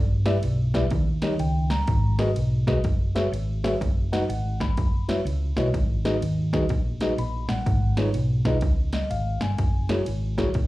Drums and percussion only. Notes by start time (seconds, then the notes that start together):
0.26 snare, ride
0.43 ride
0.74 kick, snare, ride
0.90 kick, ride
1.22 snare, ride
1.39 ride
1.70 snare, ride
1.87 kick, ride
2.19 snare, ride
2.36 ride
2.67 kick, snare, ride
2.84 kick, ride
3.16 snare, ride
3.34 ride
3.64 snare, ride
3.81 kick, ride
4.13 snare, ride
4.30 ride
4.60 kick, snare, ride
4.77 kick, ride
5.09 snare, ride
5.27 ride
5.57 snare, ride
5.74 kick, ride
6.05 snare, ride
6.22 ride
6.53 kick, snare, ride
6.69 kick, ride
7.01 snare, ride
7.18 ride
7.49 snare, ride
7.66 kick, ride
7.97 snare, ride
8.14 ride
8.45 kick, snare, ride
8.61 kick, ride
8.93 snare, ride
9.11 ride
9.41 snare, ride
9.58 kick, ride
9.89 snare, ride
10.06 ride
10.38 kick, snare, ride
10.54 kick, ride